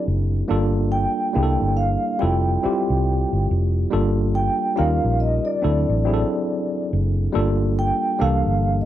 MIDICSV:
0, 0, Header, 1, 5, 480
1, 0, Start_track
1, 0, Tempo, 857143
1, 271, Time_signature, 4, 2, 24, 8
1, 4958, End_track
2, 0, Start_track
2, 0, Title_t, "Vibraphone"
2, 0, Program_c, 0, 11
2, 514, Note_on_c, 0, 79, 94
2, 970, Note_off_c, 0, 79, 0
2, 990, Note_on_c, 0, 77, 81
2, 1228, Note_on_c, 0, 79, 72
2, 1238, Note_off_c, 0, 77, 0
2, 1927, Note_off_c, 0, 79, 0
2, 2437, Note_on_c, 0, 79, 96
2, 2673, Note_on_c, 0, 77, 92
2, 2681, Note_off_c, 0, 79, 0
2, 2896, Note_off_c, 0, 77, 0
2, 2913, Note_on_c, 0, 75, 72
2, 3052, Note_on_c, 0, 74, 67
2, 3055, Note_off_c, 0, 75, 0
2, 3849, Note_off_c, 0, 74, 0
2, 4361, Note_on_c, 0, 79, 97
2, 4580, Note_off_c, 0, 79, 0
2, 4600, Note_on_c, 0, 77, 83
2, 4894, Note_off_c, 0, 77, 0
2, 4936, Note_on_c, 0, 75, 58
2, 4958, Note_off_c, 0, 75, 0
2, 4958, End_track
3, 0, Start_track
3, 0, Title_t, "Tine electric piano"
3, 0, Program_c, 1, 4
3, 0, Control_c, 1, 64, 127
3, 0, Note_on_c, 1, 54, 66
3, 0, Note_on_c, 1, 60, 61
3, 0, Note_on_c, 1, 62, 64
3, 0, Note_on_c, 1, 64, 63
3, 0, Note_on_c, 1, 67, 52
3, 0, Note_on_c, 1, 69, 79
3, 105, Note_off_c, 1, 54, 0
3, 106, Note_off_c, 1, 60, 0
3, 108, Note_off_c, 1, 62, 0
3, 111, Note_off_c, 1, 64, 0
3, 130, Note_off_c, 1, 69, 0
3, 268, Note_on_c, 1, 55, 72
3, 271, Note_on_c, 1, 58, 76
3, 276, Note_on_c, 1, 62, 75
3, 277, Control_c, 1, 64, 0
3, 280, Note_on_c, 1, 65, 73
3, 282, Note_off_c, 1, 67, 0
3, 283, Note_on_c, 1, 69, 86
3, 386, Control_c, 1, 64, 127
3, 739, Note_off_c, 1, 55, 0
3, 745, Note_off_c, 1, 58, 0
3, 746, Note_on_c, 1, 55, 68
3, 749, Note_off_c, 1, 62, 0
3, 752, Note_on_c, 1, 58, 70
3, 756, Note_off_c, 1, 65, 0
3, 756, Note_on_c, 1, 62, 67
3, 757, Note_off_c, 1, 69, 0
3, 759, Control_c, 1, 64, 0
3, 759, Note_on_c, 1, 64, 61
3, 763, Note_on_c, 1, 68, 65
3, 799, Note_off_c, 1, 68, 0
3, 799, Note_on_c, 1, 69, 81
3, 859, Control_c, 1, 64, 127
3, 1148, Note_off_c, 1, 55, 0
3, 1151, Note_off_c, 1, 58, 0
3, 1153, Note_off_c, 1, 62, 0
3, 1154, Note_off_c, 1, 64, 0
3, 1175, Note_off_c, 1, 69, 0
3, 1225, Note_on_c, 1, 55, 67
3, 1230, Note_on_c, 1, 60, 56
3, 1234, Note_on_c, 1, 64, 65
3, 1237, Note_on_c, 1, 65, 68
3, 1239, Control_c, 1, 64, 0
3, 1241, Note_on_c, 1, 69, 70
3, 1349, Control_c, 1, 64, 127
3, 1428, Note_off_c, 1, 55, 0
3, 1430, Note_off_c, 1, 60, 0
3, 1432, Note_off_c, 1, 64, 0
3, 1434, Note_off_c, 1, 65, 0
3, 1436, Note_off_c, 1, 69, 0
3, 1472, Note_on_c, 1, 55, 65
3, 1474, Note_on_c, 1, 60, 65
3, 1477, Note_on_c, 1, 64, 57
3, 1481, Note_on_c, 1, 65, 56
3, 1486, Note_on_c, 1, 67, 72
3, 2027, Note_off_c, 1, 55, 0
3, 2029, Note_off_c, 1, 60, 0
3, 2030, Note_off_c, 1, 64, 0
3, 2032, Note_off_c, 1, 65, 0
3, 2035, Note_off_c, 1, 67, 0
3, 2187, Note_on_c, 1, 55, 76
3, 2190, Note_on_c, 1, 58, 69
3, 2194, Note_on_c, 1, 62, 70
3, 2198, Control_c, 1, 64, 0
3, 2198, Note_on_c, 1, 65, 66
3, 2201, Note_on_c, 1, 69, 80
3, 2311, Control_c, 1, 64, 127
3, 2656, Note_off_c, 1, 55, 0
3, 2663, Note_on_c, 1, 55, 77
3, 2666, Note_on_c, 1, 61, 70
3, 2670, Note_off_c, 1, 65, 0
3, 2671, Note_off_c, 1, 58, 0
3, 2672, Note_on_c, 1, 63, 72
3, 2673, Note_off_c, 1, 62, 0
3, 2676, Note_off_c, 1, 69, 0
3, 2677, Note_on_c, 1, 65, 67
3, 2678, Control_c, 1, 64, 0
3, 2679, Note_on_c, 1, 70, 88
3, 2772, Control_c, 1, 64, 127
3, 3066, Note_off_c, 1, 55, 0
3, 3068, Note_off_c, 1, 61, 0
3, 3071, Note_off_c, 1, 63, 0
3, 3073, Note_off_c, 1, 65, 0
3, 3075, Note_off_c, 1, 70, 0
3, 3145, Note_on_c, 1, 54, 65
3, 3146, Note_on_c, 1, 60, 59
3, 3151, Note_on_c, 1, 62, 65
3, 3156, Note_on_c, 1, 64, 64
3, 3158, Control_c, 1, 64, 0
3, 3160, Note_on_c, 1, 69, 76
3, 3250, Control_c, 1, 64, 127
3, 3348, Note_off_c, 1, 54, 0
3, 3348, Note_off_c, 1, 60, 0
3, 3351, Note_off_c, 1, 62, 0
3, 3353, Note_off_c, 1, 64, 0
3, 3355, Note_off_c, 1, 69, 0
3, 3383, Note_on_c, 1, 54, 67
3, 3389, Note_on_c, 1, 60, 64
3, 3391, Note_on_c, 1, 62, 57
3, 3396, Note_on_c, 1, 64, 58
3, 3401, Note_on_c, 1, 68, 62
3, 3436, Note_on_c, 1, 69, 75
3, 3438, Note_off_c, 1, 68, 0
3, 3943, Note_off_c, 1, 54, 0
3, 3946, Note_off_c, 1, 60, 0
3, 3947, Note_off_c, 1, 62, 0
3, 3950, Note_off_c, 1, 64, 0
3, 3970, Note_off_c, 1, 69, 0
3, 4101, Note_on_c, 1, 55, 83
3, 4106, Note_on_c, 1, 58, 76
3, 4109, Note_on_c, 1, 62, 77
3, 4112, Note_on_c, 1, 65, 73
3, 4117, Control_c, 1, 64, 0
3, 4117, Note_on_c, 1, 69, 90
3, 4201, Control_c, 1, 64, 127
3, 4577, Note_off_c, 1, 55, 0
3, 4580, Note_off_c, 1, 58, 0
3, 4584, Note_on_c, 1, 55, 73
3, 4586, Note_off_c, 1, 62, 0
3, 4587, Note_on_c, 1, 58, 75
3, 4592, Note_off_c, 1, 65, 0
3, 4593, Note_off_c, 1, 69, 0
3, 4593, Note_on_c, 1, 62, 67
3, 4596, Note_on_c, 1, 52, 62
3, 4598, Control_c, 1, 64, 0
3, 4599, Note_on_c, 1, 69, 86
3, 4684, Control_c, 1, 64, 127
3, 4958, Note_off_c, 1, 52, 0
3, 4958, Note_off_c, 1, 55, 0
3, 4958, Note_off_c, 1, 58, 0
3, 4958, Note_off_c, 1, 62, 0
3, 4958, Note_off_c, 1, 69, 0
3, 4958, End_track
4, 0, Start_track
4, 0, Title_t, "Fingered electric bass"
4, 0, Program_c, 2, 33
4, 43, Note_on_c, 2, 30, 71
4, 233, Note_off_c, 2, 30, 0
4, 284, Note_on_c, 2, 31, 95
4, 586, Note_off_c, 2, 31, 0
4, 764, Note_on_c, 2, 36, 83
4, 872, Note_off_c, 2, 36, 0
4, 905, Note_on_c, 2, 31, 73
4, 1094, Note_off_c, 2, 31, 0
4, 1247, Note_on_c, 2, 29, 93
4, 1436, Note_off_c, 2, 29, 0
4, 1624, Note_on_c, 2, 36, 72
4, 1814, Note_off_c, 2, 36, 0
4, 1864, Note_on_c, 2, 31, 66
4, 1940, Note_off_c, 2, 31, 0
4, 1965, Note_on_c, 2, 29, 78
4, 2154, Note_off_c, 2, 29, 0
4, 2204, Note_on_c, 2, 31, 96
4, 2507, Note_off_c, 2, 31, 0
4, 2685, Note_on_c, 2, 39, 83
4, 2793, Note_off_c, 2, 39, 0
4, 2825, Note_on_c, 2, 34, 70
4, 3014, Note_off_c, 2, 34, 0
4, 3163, Note_on_c, 2, 38, 85
4, 3271, Note_off_c, 2, 38, 0
4, 3299, Note_on_c, 2, 33, 77
4, 3491, Note_off_c, 2, 33, 0
4, 3881, Note_on_c, 2, 30, 77
4, 4072, Note_off_c, 2, 30, 0
4, 4121, Note_on_c, 2, 31, 96
4, 4425, Note_off_c, 2, 31, 0
4, 4601, Note_on_c, 2, 36, 86
4, 4710, Note_off_c, 2, 36, 0
4, 4741, Note_on_c, 2, 31, 74
4, 4932, Note_off_c, 2, 31, 0
4, 4958, End_track
5, 0, Start_track
5, 0, Title_t, "Muted fingered electric bass strokes"
5, 1486, Note_on_c, 9, 29, 41
5, 1542, Note_off_c, 9, 29, 0
5, 4958, End_track
0, 0, End_of_file